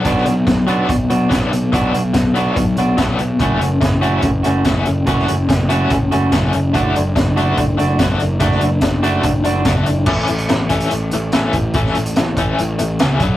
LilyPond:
<<
  \new Staff \with { instrumentName = "Clean electric guitar" } { \time 4/4 \key a \major \tempo 4 = 144 <b d' fis'>8 r4 <b d' fis'>8 r8 <b d' fis'>8 r4 | <b d' fis'>8 r4 <b d' fis'>8 r8 <b d' fis'>8 r4 | <a cis' fis'>8 r4 <a cis' fis'>8 r8 <a cis' fis'>8 r4 | <a cis' fis'>8 r4 <a cis' fis'>8 r8 <a cis' fis'>8 r4 |
<a d' fis'>8 r4 <a d' fis'>8 r8 <a d' fis'>8 r4 | <a d' fis'>8 r4 <a d' fis'>8 r8 <a d' fis'>8 r4 | r1 | r1 | }
  \new Staff \with { instrumentName = "Overdriven electric guitar" } { \time 4/4 \key a \major <fis b d'>8 <fis b>8 <fis b>8 <fis b d'>8 <fis b>8 <fis b>8 <fis b d'>8 <fis b>8 | <fis b d'>8 <fis b>8 <fis b>8 <fis b d'>8 <fis b>8 <fis b>8 <fis b d'>8 <fis b>8 | <a cis' fis'>8 <a cis'>8 <a cis'>8 <a cis' fis'>8 <a cis'>8 <a cis'>8 <a cis' fis'>8 <a cis'>8 | <a cis' fis'>8 <a cis'>8 <a cis'>8 <a cis' fis'>8 <a cis'>8 <a cis'>8 <a cis' fis'>8 <a cis'>8 |
<a d' fis'>8 <a d'>8 <a d'>8 <a d' fis'>8 <a d'>8 <a d'>8 <a d' fis'>8 <a d'>8 | <a d' fis'>8 <a d'>8 <a d'>8 <a d' fis'>8 <a d'>8 <a d'>8 <a d' fis'>8 <a d'>8 | <e a cis'>8 <e a>8 <e a>8 <e a cis'>8 <e a>8 <e a>8 <e a cis'>8 <e a>8 | <e a cis'>8 <e a>8 <e a>8 <e a cis'>8 <e a>8 <e a>8 <e a cis'>8 <fis b d'>8 | }
  \new Staff \with { instrumentName = "Picked electric bass" } { \clef bass \time 4/4 \key a \major b,,8 b,,8 b,,4 b,,8 b,,8 b,,8 b,,8 | b,,8 b,,8 b,,4 b,,8 b,,8 b,,8 b,,8 | fis,,8 fis,,8 fis,,4 fis,,8 fis,,8 fis,,8 fis,,8 | fis,,8 fis,,8 fis,,4 fis,,8 fis,,8 fis,,8 fis,,8 |
fis,,8 fis,,8 fis,,4 fis,,8 fis,,8 fis,,8 fis,,8 | fis,,8 fis,,8 fis,,4 fis,,8 fis,,8 fis,,8 fis,,8 | a,,8 a,,8 a,,4 a,,8 a,,8 a,,8 a,,8 | a,,8 a,,8 a,,4 a,,8 a,,8 cis,8 b,,8 | }
  \new DrumStaff \with { instrumentName = "Drums" } \drummode { \time 4/4 <hh bd>16 sn16 hh8 <hh bd sn>8 hh8 <hh bd>8 hh8 <hh bd sn>8 hh8 | <hh bd>8 hh8 <hh bd sn>8 hh8 <hh bd>8 hh8 <hh bd sn>8 hh8 | <hh bd>8 hh8 <hh bd sn>8 hh8 <hh bd>8 hh8 <hh bd sn>8 hh8 | <hh bd>16 sn16 hh8 <hh bd sn>8 hh8 <hh bd>8 hh8 <hh bd sn>8 hh8 |
<hh bd>8 hh8 <hh bd sn>8 hh8 <hh bd>8 hh8 <hh bd sn>8 hh8 | <hh bd>16 sn16 hh8 <hh bd sn>8 hh8 <hh bd>8 hh8 <hh bd sn>8 hh8 | <cymc bd>16 sn16 hh16 hh16 <hh sn>8 <hh bd>16 hh16 hh8 hh8 <hh sn>8 <hh bd>8 | <hh bd>16 sn16 hh16 hh16 <hh sn>8 <hh bd>8 hh8 hh8 <hh sn>8 <hh bd>8 | }
>>